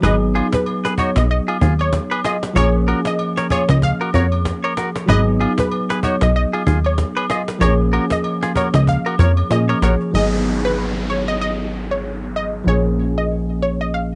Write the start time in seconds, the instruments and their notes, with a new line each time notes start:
0.01 analog synth bass G#1, tine electric piano F#3 B3 D#4, clean electric guitar G#4 B4, synth pluck D#5, cajon bass, high agogo
0.06 tine electric piano G#4
0.35 clean electric guitar F4 G#4, cajon slap, high agogo
0.52 synth pluck B4, cajon bass, cajon slap
0.66 cajon slap, high agogo
0.85 clean electric guitar G#4 B4, cajon slap
0.98 clean electric guitar D#4 F#4, synth pluck C#5, cajon bass, high agogo
1.16 analog synth bass B1, synth pluck D#5, cajon slap
1.29 synth pluck D#5, cajon slap
1.48 clean electric guitar F4 G#4, high agogo
1.61 analog synth bass D#2, clean electric guitar F4 G#4, cajon bass
1.79 synth pluck C#5, cajon slap, high agogo
1.93 cajon bass, cajon slap
2.11 clean electric guitar G#4 B4, high agogo
2.24 clean electric guitar F4 G#4, synth pluck D#5, cajon slap
2.43 cajon slap
2.53 analog synth bass A#1, tine electric piano F3 A#3 C#4, clean electric guitar A#4 C#5, synth pluck C#5, cajon bass, high agogo
2.58 tine electric piano G#4
2.88 clean electric guitar F#4 A#4, cajon slap, high agogo
3.05 synth pluck D#5, cajon slap
3.19 cajon slap, high agogo
3.37 clean electric guitar A#4 C#5, cajon slap
3.50 clean electric guitar F4 G#4, synth pluck C#5, cajon bass, high agogo
3.69 analog synth bass C#2, synth pluck D#5, cajon slap
3.82 synth pluck F5, cajon bass
4.01 clean electric guitar F#4 A#4, high agogo
4.14 analog synth bass F2, clean electric guitar F#4 A#4, synth pluck C#5, cajon bass
4.32 cajon slap, high agogo
4.45 cajon bass, cajon slap
4.64 clean electric guitar A#4 C#5, high agogo
4.77 clean electric guitar F#4 A#4, cajon slap
4.95 cajon slap
5.06 analog synth bass G#1, tine electric piano F#3 B3 D#4, clean electric guitar G#4 B4, synth pluck D#5, cajon bass, high agogo
5.11 tine electric piano G#4
5.40 clean electric guitar F4 G#4, cajon slap, high agogo
5.58 synth pluck B4, cajon bass, cajon slap
5.72 cajon slap, high agogo
5.90 clean electric guitar G#4 B4, cajon slap
6.03 clean electric guitar D#4 F#4, synth pluck C#5, cajon bass, high agogo
6.21 analog synth bass B1, synth pluck D#5, cajon slap
6.36 synth pluck D#5
6.53 clean electric guitar F4 G#4, high agogo
6.67 analog synth bass D#2, clean electric guitar F4 G#4, cajon bass
6.84 synth pluck C#5, cajon slap, high agogo
6.98 cajon bass, cajon slap
7.17 clean electric guitar G#4 B4, high agogo
7.30 clean electric guitar F4 G#4, synth pluck D#5, cajon slap
7.48 cajon slap
7.59 analog synth bass A#1, tine electric piano F3 A#3 C4, clean electric guitar A#4 C#5, synth pluck C#5, cajon bass, high agogo
7.64 tine electric piano G#4
7.68 tine electric piano C#4
7.93 clean electric guitar F#4 A#4, cajon slap, high agogo
8.10 synth pluck D#5, cajon bass, cajon slap
8.24 cajon slap, high agogo
8.43 clean electric guitar F4 G#4, cajon slap
8.56 clean electric guitar F#4 A#4, synth pluck C#5, cajon bass, high agogo
8.74 analog synth bass C#2, synth pluck D#5, cajon slap
8.87 synth pluck F5, cajon bass
9.06 clean electric guitar F#4 A#4, high agogo
9.19 analog synth bass F2, clean electric guitar A#4 C#5, synth pluck C#5, cajon bass
9.37 cajon slap, high agogo
9.49 analog synth bass A#2, tine electric piano F3 A#3 C#4 G#4, synth pluck D#5, cajon slap
9.69 clean electric guitar A#4 C#5, high agogo
9.82 analog synth bass A#1, clean electric guitar F#4 A#4, synth pluck C#5, cajon slap
10.00 cajon slap
10.11 analog synth bass G#1, tine electric piano F#3 A#3 D#4, synth pluck D#5, downlifter
10.16 tine electric piano B3 G#4
10.65 synth pluck B4
11.10 synth pluck C#5
11.28 synth pluck D#5
11.41 synth pluck D#5
11.91 synth pluck C#5
12.36 synth pluck D#5
12.64 analog synth bass A#1, tine electric piano F3 A#3 C#4, synth pluck C#5
12.69 tine electric piano G#4
13.18 synth pluck D#5
13.63 synth pluck C#5
13.81 synth pluck D#5
13.94 synth pluck F5